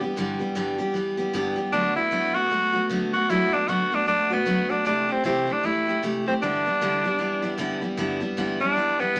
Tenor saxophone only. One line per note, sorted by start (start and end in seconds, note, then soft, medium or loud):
1.73 1.94 D4 loud
1.96 2.36 E4 loud
2.35 2.90 F#4 loud
3.13 3.31 F#4 loud
3.30 3.55 E4 loud
3.53 3.70 D4 loud
3.68 3.96 F#4 loud
3.95 4.07 D4 medium
4.08 4.35 D4 loud
4.33 4.71 B3 medium
4.70 4.86 D4 medium
4.86 5.13 D4 medium
5.12 5.25 C4 medium
5.25 5.54 C4 medium
5.52 5.67 D4 medium
5.65 6.04 E4 loud
6.28 6.34 C4 medium
6.42 7.56 D4 medium
8.61 9.02 D4 loud
9.00 9.20 B3 loud